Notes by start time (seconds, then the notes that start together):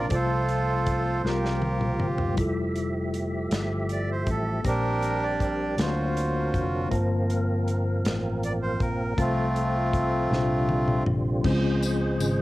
Already playing: C3 A#3 D4 F4 A#4 C5 D5
0.09 C2 C3 F3 G3 A3 C4 F4 A4 C5, kick, closed hi-hat
0.14 A3 F4 A4 C5
0.48 closed hi-hat
0.86 kick, closed hi-hat
1.23 C2 C3 F3 G3 A#3 C4 F4 F#4 A#4, snare
1.27 F4 G4
1.31 G4
1.45 snare
1.62 high tom
1.81 mid tom
2.00 G1, mid tom
2.18 floor tom
2.34 F1 F3 G3 G#3 E4 G4 E5, kick, closed hi-hat
2.39 F4 A4
2.44 A3
2.76 closed hi-hat
3.14 closed hi-hat
3.51 G1, snare, closed hi-hat
3.89 D5, closed hi-hat
4.12 C5
4.27 A1 A4, kick, closed hi-hat
4.63 A#1 A#2 G3 A#3 C4 D4 G4 A#4 C5, kick, closed hi-hat
4.67 D4 G4 A#4
5.02 closed hi-hat
5.23 D5
5.40 D5, kick, closed hi-hat
5.76 D2 D3 F#3 A#3 C4 D4 A#4, snare, closed hi-hat
5.80 F4 F#4 B4 C5
5.86 C5
6.17 closed hi-hat
6.54 F1, kick, closed hi-hat
6.89 G1 G2 F3 A#3 C4 F4 A#4, kick, closed hi-hat
6.94 C5 A5
7.30 closed hi-hat
7.68 closed hi-hat
8.04 A1, snare, closed hi-hat
8.43 D5, closed hi-hat
8.62 C5
8.80 A#1 A#4, kick, closed hi-hat
9.17 C2 C3 F3 A3 C4 F4 A4 C5, kick, closed hi-hat
9.56 closed hi-hat
9.93 kick, closed hi-hat
10.30 C2 A#2 C3 D3 G3 C4 D4 E4 C5, snare
10.37 F4
10.69 high tom
10.88 mid tom
11.06 A#1, mid tom
11.43 C#2 C#3 F3 G#3 C4 C#4 E4 G#4 C5, kick, crash
11.53 F4
11.82 ride, tambourine
12.19 G#1, ride, tambourine